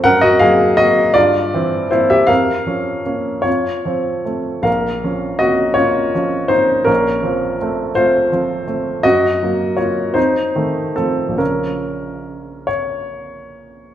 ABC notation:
X:1
M:6/8
L:1/16
Q:3/8=53
K:Bbm
V:1 name="Upright piano"
[Bg] [Ge] [Af]2 [Ge]2 [F=d]4 [=Ec] [=G=e] | [Bf]6 [Fd]6 | [Bf]4 [Ge]2 [Fd]4 [Ec]2 | [DB]6 [Fc]6 |
[Ge]4 [Fd]2 [Ec]4 [C=A]2 | [DB]6 d6 |]
V:2 name="Upright piano"
G,,2 [G,B,]2 B,2 =G,,2 [=E,C]2 [B,C]2 | F,,2 [F,D]2 [B,D]2 F,,2 [F,C]2 [=A,C]2 | B,,,2 [F,D]2 [B,D]2 [B,D]2 [F,D]2 [B,D]2 | B,,,2 [F,C]2 [=A,C]2 [A,C]2 [F,C]2 [A,C]2 |
G,,2 [G,B,]2 B,2 F,,2 [E,=A,]2 [F,A,]2 | [B,,,D,F,B,]12 |]